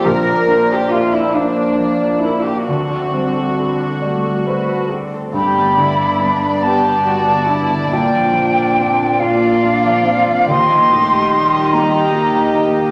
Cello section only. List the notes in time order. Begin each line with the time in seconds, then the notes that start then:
0.06 A#4
0.72 G4
0.91 F4
1.13 E4
1.35 D4
2.22 E4
2.45 G4
2.67 F#4
5.35 G2
7.93 A#2
10.49 D#3